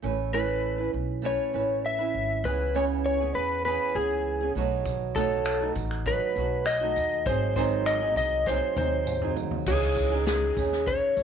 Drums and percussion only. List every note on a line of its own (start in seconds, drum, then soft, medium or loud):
4.86 kick loud
4.86 tambourine soft
4.86 shaker medium
5.15 kick loud
5.15 tambourine soft
5.15 shaker soft
5.45 finger snap loud
5.45 tambourine medium
5.45 shaker medium
5.75 kick medium
5.75 tambourine soft
5.75 shaker soft
5.91 finger snap soft
5.91 shaker medium
6.06 kick medium
6.06 shaker medium
6.36 shaker medium
6.65 finger snap loud
6.65 tambourine medium
6.65 shaker medium
6.96 tambourine soft
6.96 shaker soft
7.11 shaker soft
7.26 kick loud
7.26 tambourine soft
7.26 shaker medium
7.56 kick medium
7.56 tambourine soft
7.56 shaker medium
7.86 finger snap medium
7.86 tambourine medium
7.86 shaker medium
8.16 kick medium
8.16 tambourine soft
8.16 shaker soft
8.46 kick medium
8.46 snare soft
8.46 tambourine soft
8.76 high tom medium
8.76 tambourine soft
9.07 mid tom medium
9.07 tambourine medium
9.21 mid tom medium
9.36 floor tom medium
9.36 tambourine soft
9.51 floor tom medium
9.66 kick loud
9.66 crash medium
9.66 tambourine medium
9.96 kick medium
9.96 tambourine soft
9.96 shaker soft
10.26 snare loud
10.26 tambourine medium
10.26 shaker medium
10.57 kick medium
10.57 tambourine soft
10.57 shaker soft
10.72 snare soft
10.87 kick medium
10.87 tambourine soft
10.87 shaker medium
11.17 shaker medium